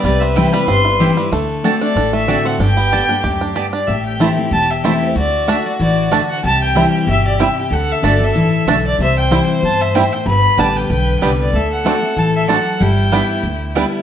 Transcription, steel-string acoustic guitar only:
0.05 0.66 C3 medium
0.36 0.53 E3 medium
0.36 0.53 G3 medium
0.36 0.53 C4 medium
0.36 0.52 E4 loud
0.53 0.68 C4 medium
0.53 0.68 E4 medium
0.68 1.29 G2 medium
1.00 1.16 E3 medium
1.00 1.17 G3 medium
1.00 1.17 C4 medium
1.00 1.16 E4 loud
1.17 1.32 C4 medium
1.17 1.32 E4 medium
1.33 1.62 D3 medium
1.64 1.94 D3 medium
1.64 1.95 A3 medium
1.64 1.95 C4 medium
1.64 1.95 F#4 medium
1.96 2.57 A2 medium
2.27 2.58 D3 medium
2.27 2.59 A3 medium
2.27 2.59 C4 medium
2.27 2.59 F#4 loud
2.60 3.21 G2 medium
2.92 3.08 D3 medium
2.92 3.09 G3 medium
2.92 3.09 B3 medium
2.92 3.08 G4 loud
3.09 3.24 B3 medium
3.09 3.23 G4 medium
3.24 3.54 F#2 medium
3.56 3.87 G2 medium
3.87 4.49 A2 medium
4.20 4.36 E3 medium
4.20 4.36 A3 medium
4.20 4.37 C4 loud
4.20 4.35 E4 medium
4.37 4.52 C4 medium
4.37 4.51 E4 medium
4.51 5.12 E2 medium
4.84 5.14 E3 medium
4.84 5.15 A3 medium
4.84 5.15 C4 loud
4.84 5.15 E4 medium
5.16 5.46 D3 medium
5.47 5.64 D3 medium
5.47 5.64 A3 medium
5.47 5.64 D4 medium
5.47 5.63 F#4 medium
5.64 5.80 D4 medium
5.64 5.79 F#4 medium
5.79 6.10 E3 medium
6.11 6.42 D3 medium
6.44 7.04 C3 medium
6.75 7.06 E3 medium
6.75 7.06 G3 medium
6.75 7.07 C4 medium
6.75 7.07 E4 medium
7.07 7.38 B2 medium
7.39 7.70 C3 medium
7.70 8.01 D3 medium
8.02 8.19 D3 medium
8.02 8.19 A3 medium
8.02 8.19 D4 medium
8.02 8.19 F#4 medium
8.20 8.35 D4 medium
8.20 8.34 F#4 medium
8.36 8.66 E3 medium
8.68 8.98 D3 medium
9.00 9.60 C3 medium
9.30 9.61 E3 medium
9.30 9.61 G3 medium
9.30 9.61 C4 medium
9.30 9.62 E4 medium
9.62 9.93 B2 medium
9.94 10.25 A2 medium
10.27 10.87 G2 medium
10.57 10.88 D3 medium
10.57 10.88 G3 medium
10.57 10.89 B3 medium
10.57 10.89 G4 medium
10.90 11.20 D3 medium
11.22 11.52 D3 medium
11.22 11.52 G3 loud
11.22 11.52 B3 loud
11.22 11.53 G4 medium
11.54 11.83 D3 medium
11.84 12.01 D3 medium
11.84 12.01 A3 medium
11.84 12.02 C4 medium
11.84 12.00 F#4 medium
12.01 12.17 C4 soft
12.01 12.16 F#4 medium
12.17 12.47 E3 medium
12.48 12.79 F#3 medium
12.80 13.10 G3 loud
13.12 13.42 G3 medium
13.12 13.43 B3 medium
13.12 13.43 E4 loud
13.43 14.02 D3 medium
13.76 14.02 G3 medium
13.76 14.02 B3 medium
13.76 14.02 E4 loud

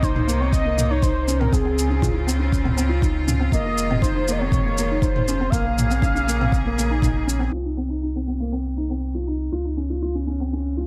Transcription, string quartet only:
0.00 1.52 C3 medium
0.00 1.50 A#3 medium
0.00 1.52 D#4 medium
1.52 3.51 C#3 medium
1.52 3.51 C4 medium
1.52 5.49 F4 medium
3.52 5.50 D#3 medium
3.52 5.50 G#3 medium
5.53 7.51 C#3 medium
5.53 7.51 A#3 medium
5.53 7.51 G#4 medium
7.52 9.51 C3 medium
7.52 9.51 A#3 medium
7.52 9.51 D#4 medium
9.54 10.87 C#3 medium
9.54 10.87 C4 medium
9.54 10.87 F4 medium

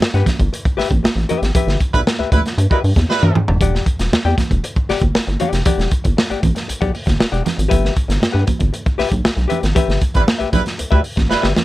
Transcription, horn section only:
1.94 2.02 G3 medium
1.94 2.02 E4 loud
1.94 2.02 B4 loud
2.32 2.40 G3 medium
2.32 2.41 E4 medium
2.32 2.41 B4 loud
2.70 2.78 G3 medium
2.70 2.78 E4 medium
2.70 2.78 B4 loud
3.09 3.42 G3 loud
3.09 3.42 E4 medium
3.09 3.42 B4 loud
10.15 10.24 G3 loud
10.15 10.23 E4 medium
10.15 10.23 B4 loud
10.53 10.61 G3 medium
10.53 10.61 E4 medium
10.53 10.61 B4 loud
10.90 10.99 G3 medium
10.90 10.99 E4 medium
10.90 10.99 B4 loud
11.30 11.47 G3 loud
11.30 11.46 E4 medium
11.30 11.47 B4 loud

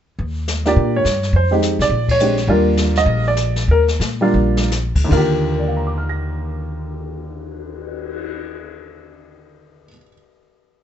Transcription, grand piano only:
0.66 1.03 A#3 medium
0.66 1.03 D4 medium
0.66 1.04 F4 medium
0.66 1.04 G4 medium
0.66 0.94 D5 medium
0.96 1.32 C#5 medium
1.36 1.52 C5 medium
1.51 1.89 G#3 medium
1.51 1.89 C4 soft
1.51 1.89 D#4 medium
1.51 1.89 G4 medium
1.82 2.08 D5 medium
2.11 2.47 C#5 medium
2.20 2.36 G#3 medium
2.20 2.36 C4 soft
2.20 2.37 D4 medium
2.20 2.37 G4 medium
2.48 3.30 G3 medium
2.48 3.30 A#3 medium
2.48 3.30 D4 medium
2.48 3.31 F4 medium
2.48 2.67 A#4 medium
2.98 3.24 D#5 medium
3.28 3.66 D5 medium
3.71 3.82 A#4 medium
4.21 4.69 G3 medium
4.21 4.69 A#3 medium
4.21 4.69 D4 medium
4.21 4.69 F4 medium
5.05 9.86 D#2 medium
5.09 9.88 D3 medium
5.09 9.90 F4 medium
5.09 5.50 A#4 medium
5.17 9.92 G4 medium
5.52 9.85 A#4 soft
5.60 9.89 D5 soft
5.68 9.93 F5 soft
5.77 9.97 A#5 soft
5.87 10.02 D6 soft
5.98 10.08 F6 soft
6.09 10.13 A#6 soft

